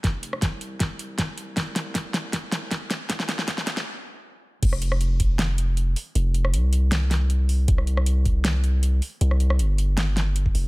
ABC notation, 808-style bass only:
X:1
M:4/4
L:1/8
Q:1/4=157
K:Cmix
V:1 name="808-style bass" clef=bass
F,,,2 C,,6 | C,,6- C,, z | C,,2 G,,,2 z4 | F,,,6- F,,, z |
F,,,2 C,,6 | C,,6- C,, z | C,,2 G,,,4- G,,, F,,, |]